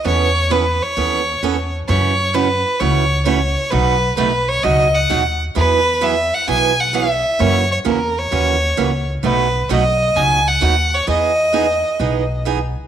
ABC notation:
X:1
M:4/4
L:1/8
Q:"Swing" 1/4=131
K:E
V:1 name="Fiddle"
c2 B c4 z | c2 B2 c2 c2 | B2 B c d f2 z | B2 e f g f e2 |
c c ^A c4 z | B2 d2 g f2 c | d6 z2 |]
V:2 name="Steel-string acoustic guitar"
[E,B,CA] z [E,B,CA] z [E,B,CA] z [E,B,CA] z | [C,E,A,CF] z [C,E,A,CF] z [C,E,A,CF] z [C,E,A,CF] z | [B,,F,A,DF] z [B,,F,A,DF] z [B,,F,A,DF] z [B,,F,A,DF] z | [E,F,B,EG] z [E,F,B,EG] z [E,F,B,EG] z [E,F,B,EG] z |
[C,E,^A,CF] z [C,E,A,CF] z [C,E,A,CF] z [C,E,A,CF] z | [B,,F,A,DF] z [B,,F,A,DF] z [B,,F,A,DF] z [B,,F,A,DF] z | [E,B,DG] z [E,B,DG] z [E,B,DG] z [E,B,DG] z |]
V:3 name="Upright bass" clef=bass
E,,4 D,,2 E,,2 | F,,4 C,,4 | B,,,2 B,,,2 C,,2 D,,2 | E,,4 B,,,4 |
F,,2 E,,2 D,,2 C,,2 | B,,,2 B,,,2 C,,2 D,,2 | E,,4 B,,,4 |]